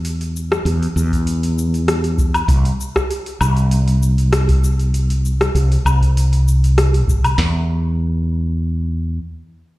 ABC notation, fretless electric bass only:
X:1
M:4/4
L:1/16
Q:"Swing 16ths" 1/4=98
K:Clyd
V:1 name="Fretless electric bass" clef=bass
E,,3 z E,, z E,,8- E,, z | C,, z4 z C,,8- C,,2- | C,,3 z C,, z C,,8 G,,, C,, | E,,12 z4 |]